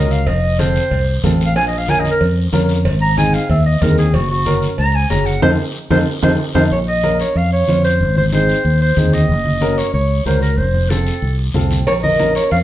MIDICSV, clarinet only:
0, 0, Header, 1, 2, 480
1, 0, Start_track
1, 0, Key_signature, -5, "minor"
1, 0, Tempo, 322234
1, 404, Time_signature, 4, 2, 24, 8
1, 18818, End_track
2, 0, Start_track
2, 0, Title_t, "Clarinet"
2, 0, Program_c, 0, 71
2, 0, Note_on_c, 0, 75, 76
2, 168, Note_on_c, 0, 77, 83
2, 190, Note_off_c, 0, 75, 0
2, 407, Note_on_c, 0, 75, 89
2, 430, Note_off_c, 0, 77, 0
2, 879, Note_on_c, 0, 72, 108
2, 901, Note_off_c, 0, 75, 0
2, 1813, Note_off_c, 0, 72, 0
2, 2166, Note_on_c, 0, 77, 89
2, 2321, Note_off_c, 0, 77, 0
2, 2328, Note_on_c, 0, 80, 82
2, 2482, Note_off_c, 0, 80, 0
2, 2492, Note_on_c, 0, 75, 79
2, 2650, Note_on_c, 0, 77, 87
2, 2673, Note_off_c, 0, 75, 0
2, 2823, Note_on_c, 0, 80, 91
2, 2845, Note_off_c, 0, 77, 0
2, 2976, Note_on_c, 0, 75, 84
2, 2998, Note_off_c, 0, 80, 0
2, 3126, Note_off_c, 0, 75, 0
2, 3137, Note_on_c, 0, 70, 93
2, 3364, Note_off_c, 0, 70, 0
2, 4488, Note_on_c, 0, 82, 105
2, 4720, Note_off_c, 0, 82, 0
2, 4735, Note_on_c, 0, 80, 80
2, 4969, Note_on_c, 0, 77, 87
2, 4992, Note_off_c, 0, 80, 0
2, 5200, Note_off_c, 0, 77, 0
2, 5218, Note_on_c, 0, 76, 95
2, 5444, Note_off_c, 0, 76, 0
2, 5451, Note_on_c, 0, 75, 87
2, 5691, Note_on_c, 0, 70, 79
2, 5713, Note_off_c, 0, 75, 0
2, 5921, Note_off_c, 0, 70, 0
2, 5933, Note_on_c, 0, 68, 89
2, 6172, Note_on_c, 0, 66, 91
2, 6195, Note_off_c, 0, 68, 0
2, 6401, Note_off_c, 0, 66, 0
2, 6414, Note_on_c, 0, 66, 99
2, 6875, Note_off_c, 0, 66, 0
2, 7128, Note_on_c, 0, 82, 108
2, 7372, Note_on_c, 0, 80, 90
2, 7394, Note_off_c, 0, 82, 0
2, 7593, Note_off_c, 0, 80, 0
2, 7602, Note_on_c, 0, 82, 86
2, 7832, Note_on_c, 0, 78, 84
2, 7855, Note_off_c, 0, 82, 0
2, 8070, Note_off_c, 0, 78, 0
2, 8078, Note_on_c, 0, 72, 104
2, 8195, Note_off_c, 0, 72, 0
2, 8802, Note_on_c, 0, 72, 100
2, 8918, Note_off_c, 0, 72, 0
2, 9287, Note_on_c, 0, 72, 102
2, 9400, Note_off_c, 0, 72, 0
2, 9753, Note_on_c, 0, 72, 94
2, 9871, Note_off_c, 0, 72, 0
2, 10009, Note_on_c, 0, 73, 94
2, 10116, Note_off_c, 0, 73, 0
2, 10247, Note_on_c, 0, 75, 107
2, 10691, Note_off_c, 0, 75, 0
2, 10723, Note_on_c, 0, 73, 100
2, 10971, Note_on_c, 0, 77, 103
2, 10993, Note_off_c, 0, 73, 0
2, 11200, Note_off_c, 0, 77, 0
2, 11209, Note_on_c, 0, 73, 104
2, 11652, Note_off_c, 0, 73, 0
2, 11681, Note_on_c, 0, 72, 98
2, 12128, Note_off_c, 0, 72, 0
2, 12178, Note_on_c, 0, 72, 98
2, 12283, Note_off_c, 0, 72, 0
2, 12406, Note_on_c, 0, 72, 101
2, 13073, Note_off_c, 0, 72, 0
2, 13130, Note_on_c, 0, 72, 96
2, 13599, Note_on_c, 0, 75, 102
2, 13622, Note_off_c, 0, 72, 0
2, 14561, Note_on_c, 0, 73, 98
2, 14583, Note_off_c, 0, 75, 0
2, 14795, Note_off_c, 0, 73, 0
2, 14804, Note_on_c, 0, 73, 92
2, 15249, Note_off_c, 0, 73, 0
2, 15282, Note_on_c, 0, 72, 87
2, 15505, Note_off_c, 0, 72, 0
2, 15518, Note_on_c, 0, 70, 83
2, 15752, Note_on_c, 0, 72, 90
2, 15774, Note_off_c, 0, 70, 0
2, 16235, Note_on_c, 0, 69, 80
2, 16257, Note_off_c, 0, 72, 0
2, 17036, Note_off_c, 0, 69, 0
2, 17681, Note_on_c, 0, 73, 101
2, 17789, Note_off_c, 0, 73, 0
2, 17922, Note_on_c, 0, 75, 105
2, 18368, Note_off_c, 0, 75, 0
2, 18401, Note_on_c, 0, 73, 93
2, 18624, Note_off_c, 0, 73, 0
2, 18642, Note_on_c, 0, 77, 103
2, 18750, Note_off_c, 0, 77, 0
2, 18818, End_track
0, 0, End_of_file